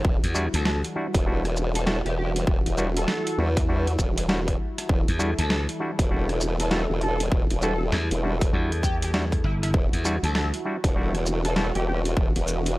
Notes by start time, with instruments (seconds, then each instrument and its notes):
Already playing: analog synth pad E3 G3 E4
0.04 wobble bass E1, analog synth pad F#4, kick
0.24 slap bass E2, closed hi-hat
0.34 clav G3 D4 E4 F#4, shaker
0.54 slap bass D2, analog synth lead A4, closed hi-hat
0.65 analog synth lead A4, snare
0.84 closed hi-hat
0.96 clav G3 D4 E4 F#4
1.15 wobble bass E1, kick, closed hi-hat
1.26 clav G3 D4 E4 F#4
1.45 cross-stick, closed hi-hat
1.56 shaker
1.75 analog synth lead A4, closed hi-hat
1.86 clav G3 D4 E4 F#4, analog synth lead A4, snare
2.05 wobble bass E1, analog synth lead G4, closed hi-hat
2.17 analog synth lead G4
2.36 closed hi-hat
2.47 wobble bass E1, kick
2.66 wobble bass E1, closed hi-hat
2.78 clav G3 D4 E4 F#4, shaker
2.97 analog synth lead A4, closed hi-hat
3.08 snare
3.27 closed hi-hat
3.38 wobble bass E2, clav G3 D4 E4 F#4
3.57 kick, closed hi-hat
3.69 clav G3 D4 E4 F#4
3.87 closed hi-hat
3.99 wobble bass E1, kick, shaker
4.18 closed hi-hat
4.29 clav G3 D4 E4 F#4, snare
4.48 kick, closed hi-hat
4.78 cross-stick, closed hi-hat
4.89 wobble bass E1, analog synth pad A4, kick
5.08 slap bass E2, closed hi-hat
5.19 clav G3 D4 E4 F#4, shaker
5.38 slap bass D2, analog synth lead A4, closed hi-hat
5.50 analog synth lead A4, snare
5.69 closed hi-hat
5.80 clav G3 D4 E4 F#4
5.99 wobble bass E1, kick, closed hi-hat
6.11 clav G3 D4 E4 F#4
6.29 cross-stick, closed hi-hat
6.41 shaker
6.60 analog synth lead A4, closed hi-hat
6.71 clav G3 D4 E4 F#4, analog synth lead A4, snare
6.90 wobble bass E1
7.01 analog synth lead A4, closed hi-hat
7.20 closed hi-hat
7.32 wobble bass E1, kick
7.50 wobble bass E1, closed hi-hat
7.62 clav G3 D4 E4 F#4, analog synth lead A4, shaker
7.92 slap bass E2, snare
8.11 wobble bass E1, closed hi-hat
8.23 clav G3 D4 E4 F#4
8.41 kick, closed hi-hat
8.53 slap bass E2, clav G3 D4 E4 F#4
8.72 closed hi-hat
8.83 analog synth lead G4, kick, shaker
9.02 analog synth lead G4, closed hi-hat
9.14 clav G3 D4 E4 F#4, snare
9.32 kick, closed hi-hat
9.44 slap bass G1, analog synth lead E4
9.62 analog synth lead E4, cross-stick, closed hi-hat
9.74 wobble bass E1, analog synth pad F#4, kick
9.93 slap bass E2, closed hi-hat
10.05 clav G3 D4 E4 F#4, shaker
10.23 slap bass D2, analog synth lead A4, closed hi-hat
10.35 analog synth lead A4, snare
10.54 closed hi-hat
10.65 clav G3 D4 E4 F#4
10.84 wobble bass E1, kick, closed hi-hat
10.96 clav G3 D4 E4 F#4
11.15 cross-stick, closed hi-hat
11.26 shaker
11.45 analog synth lead A4, closed hi-hat
11.56 clav G3 D4 E4 F#4, analog synth lead A4, snare
11.75 wobble bass E1, analog synth lead G4, closed hi-hat
11.87 analog synth lead G4
12.05 closed hi-hat
12.17 wobble bass E1, kick
12.35 wobble bass E1, closed hi-hat
12.47 shaker
12.66 closed hi-hat